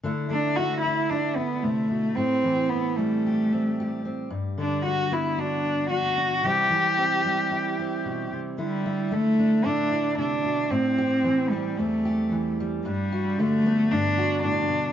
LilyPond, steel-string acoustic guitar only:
\new Staff \with { instrumentName = "Steel-string acoustic guitar" } { \time 4/4 \key d \mixolydian \tempo 4 = 112 << { <a d' e'>4 e'8 d'8 e'8 e'4.~ | e'4 c'8 g8 g'8 c'8 g'8 c'8 | r4 d'8 b8 fis'8 d'8 d'8 d'8 | <e g c' e'>4 c'8 g8 e'8 c'4. |
e'8 e'8 e'8 d'8 e'8 e'4. | c'8 g'8 c'8 g8 c'8 g'4 g8 | d'8 fis'8 d'8 b8 d'8 fis'4. | } \\ { d8 a2~ a8 c8 b,8 | a,8 e2.~ e8 | g,8 d2.~ d8 | c8 e2~ e8 b,8 c8 |
d4 a4 a,4 c8 b,8 | a,4 e4 e,4 e4 | g,4 d4 g,4 a,8 b,8 | } >> }